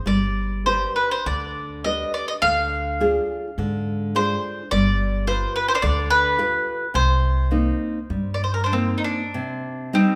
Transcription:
0.06 0.84 G1 medium
0.06 0.64 G3 medium
0.06 0.66 D5 medium
0.66 1.14 D4 soft
0.66 1.14 G4 soft
0.66 1.14 B4 soft
0.66 0.94 C5 medium
0.96 1.10 B4 medium
1.11 1.25 C5 medium
1.26 2.02 D2 medium
1.26 1.84 D3 medium
1.26 1.84 D5 medium
1.84 2.32 D4 soft
1.84 2.32 G4 soft
1.84 2.32 B4 soft
1.84 2.14 D#5 medium
2.14 2.28 D5 medium
2.28 2.33 D#5 medium
2.42 3.17 D2 medium
2.42 2.99 D3 medium
2.42 4.20 F5 loud
3.00 3.47 D4 soft
3.00 3.47 F4 soft
3.00 3.47 G#4 medium
3.58 4.32 G#2 medium
3.58 4.14 D3 medium
4.15 4.61 D4 soft
4.15 4.61 F4 soft
4.15 4.61 G#4 soft
4.15 4.69 C5 medium
4.71 5.45 G1 medium
4.71 5.27 G3 medium
4.71 5.27 D5 medium
5.27 5.72 F4 soft
5.27 5.72 G4 soft
5.27 5.72 B4 medium
5.27 5.55 C5 medium
5.56 5.68 B4 medium
5.68 5.73 C5 medium
5.75 5.83 C5 medium
5.75 5.77 D5 medium
5.82 6.56 D2 medium
5.82 6.37 D3 medium
5.82 6.10 D5 medium
6.10 6.95 B4 medium
6.38 6.83 F4 soft
6.38 6.83 G4 soft
6.38 6.84 B4 soft
6.94 7.70 C2 medium
6.94 7.49 C3 medium
6.94 8.29 C5 medium
7.51 7.98 A#3 soft
7.51 7.98 C4 soft
7.51 7.98 D#4 soft
8.10 8.90 G2 medium
8.10 8.70 G3 soft
8.34 8.43 D5 medium
8.44 8.53 C5 medium
8.54 8.63 A#4 medium
8.64 8.73 D4 soft
8.64 8.73 C5 medium
8.72 9.22 A#3 soft
8.72 9.22 C4 soft
8.72 8.97 C4 medium
8.72 9.22 D#4 soft
8.98 9.04 D#4 soft
9.04 9.97 D4 medium
9.34 9.92 C3 medium
9.93 10.15 G3 soft
9.93 10.15 C4 soft
9.93 10.15 C4 medium
9.93 10.15 D#4 soft

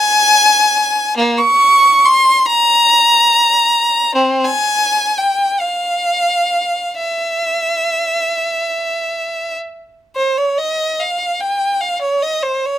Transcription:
0.00 1.17 G#5 loud
1.17 1.41 A#3 medium
1.41 2.04 C#6 loud
2.06 2.46 C6 loud
2.45 4.15 A#5 loud
4.15 4.44 C4 medium
4.45 5.17 G#5 loud
5.18 5.61 G5 medium
5.60 6.95 F5 medium
6.98 9.56 E5 medium
10.16 10.35 C5 medium
10.37 10.58 C#5 medium
10.58 10.99 D#5 medium
11.00 11.40 F5 medium
11.40 11.81 G5 medium
11.81 12.02 F5 medium
12.02 12.23 C#5 medium
12.23 12.44 D#5 medium
12.43 12.65 C5 medium
12.66 12.79 C#5 medium

